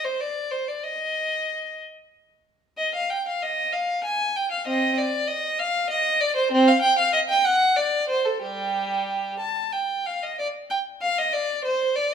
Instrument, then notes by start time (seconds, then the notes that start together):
violin
0.04 C5
0.21 D5
0.51 C5
0.68 D5
0.83 D#5
2.78 D#5
2.95 F5
3.10 G5
3.28 F5
3.42 D#5
3.73 F5
4.04 G#5
4.36 G5
4.51 F5
4.67 C4 D#5
4.97 D5
5.27 D#5
5.59 F5
5.90 D#5
6.20 D5
6.36 C5
6.52 C4
6.68 F5
6.82 G5
6.99 F5
7.13 D#5
7.29 G5
7.45 F#5
7.76 D5
8.09 C5
8.25 A4
8.42 G3 G4
9.39 A5
9.72 G5
10.06 F5
10.23 D#5
10.39 D5
10.70 G5
11.02 F5
11.18 D#5
11.33 D5
11.64 C5
11.95 D5